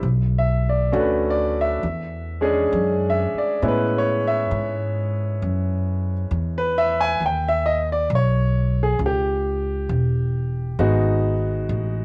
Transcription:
0.03 B1
0.39 E5
0.69 D5
0.92 D2 A3 C#4 D4 F#4
0.99 B4
1.30 D5
1.61 E5
1.83 E2
2.41 G#3 C#4 D4 G#4
2.72 F#2
3.10 E5
3.34 muted upright bass stroke
3.38 D5
3.62 A2 G#3 B3 C#4 E4
3.68 B4
3.98 C#5
4.27 E5
4.51 G#2
5.42 F#2
6.31 E2
6.58 B4
6.78 E5
7.00 G#5
7.20 D#2
7.26 G5
7.48 E5
7.66 D#5
7.92 D5
8.10 B1
8.15 C#5
8.83 G#4
8.99 C#2
9.06 G4
9.89 E1
10.79 G#1 G#3 B3 D#4 F#4
11.69 A1

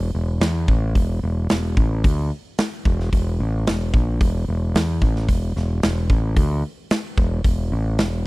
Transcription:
Already playing: E1
0.14 E1
0.41 E2, snare, open hi-hat
0.68 A1, kick
0.95 E1, kick, open hi-hat
1.23 E1
1.49 E1, snare, open hi-hat
1.77 A1, kick
2.04 D2, kick, open hi-hat
2.58 snare, open hi-hat
2.85 E1, kick
3.00 snare
3.13 E1, kick, open hi-hat
3.40 A1
3.67 E1, snare, open hi-hat
3.94 A#1, kick
4.21 E1, kick, open hi-hat
4.48 E1
4.75 E2, snare, open hi-hat
5.02 A1, kick
5.16 snare
5.28 E1, kick, open hi-hat
5.56 E1, snare
5.83 E1, snare, open hi-hat
6.10 A1, kick
6.37 D2, kick, open hi-hat
6.91 snare, open hi-hat
7.18 E1, kick
7.44 E1, kick, open hi-hat
7.72 A1
7.98 E1, snare, open hi-hat

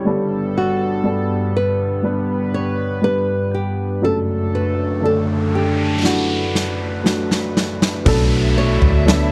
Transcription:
Already playing: G3 G4
0.05 G1 G2 G3 B3 D4 A4
0.58 F#4
1.04 G3 B3 D4 A4
1.57 B4
2.03 G3 B3 D4 B4
2.54 C#5
3.02 G3 B3 D4 G4 B4
3.54 G4
4.02 F#1 F#2 F#3 A3 D4 A4, noise sweep
4.55 B4
5.02 D3 A3 D4 A4
5.55 G4
6.02 F#3 A3 D4 E4 F#4 B4, snare
6.55 snare
7.04 F#3 A3 D4 F#4, snare
7.31 snare
7.57 snare
7.82 snare
8.05 B1 B2 F#3 A3 B3 D4 E4 A4 E5, kick, floor tom, crash, downlifter
8.58 C#5
8.82 D2, floor tom
9.06 F#3 A3 B3 D4 A4, snare

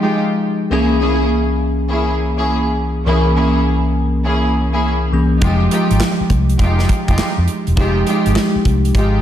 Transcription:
Already playing: F3 G#3 D#4 G#4
0.02 G#3 D#4 F4 G4
0.70 C2 E3 A#3 C#4 E4 G#4
1.01 A#3 C#4 E4 G#4
1.89 A#3 C#4 E4 G#4
2.37 A#3 C#4 E4 G#4
3.06 C2 E3 A#3 C#4 E4 G#4 A#4
3.36 A#3 C#4 E4 G#4
4.24 A#3 C#4 E4 G#4
4.73 A#3 C#4 E4 G#4
5.12 C2 E3 A#3 C#4 G#4
5.41 F1 F3 G#3 D#4 F4 F#4 G4, kick, closed hi-hat
5.50 G4
5.71 G#3 D#4 F4 G4, closed hi-hat
5.91 G#1, closed hi-hat
6.00 snare, clap, closed hi-hat
6.20 muted fingered electric bass stroke
6.30 C2, kick, closed hi-hat
6.50 closed hi-hat
6.59 F1 G#3 D#4 F4 G4, kick, closed hi-hat
6.79 snare
6.89 kick, closed hi-hat
7.08 F1 G#3 D#4 F4 G4, kick, closed hi-hat
7.18 snare, clap, closed hi-hat
7.38 F2
7.48 closed hi-hat
7.67 E1, closed hi-hat
7.76 F3 G#3 D#4 F4 G4, kick, closed hi-hat
8.07 G#3 D#4 F4 G4, closed hi-hat
8.26 G#1, closed hi-hat
8.36 snare, clap, closed hi-hat
8.55 muted fingered electric bass stroke
8.65 C2, kick, closed hi-hat
8.85 closed hi-hat
8.95 G#1 G#3 D#4 F4 G4, kick, closed hi-hat

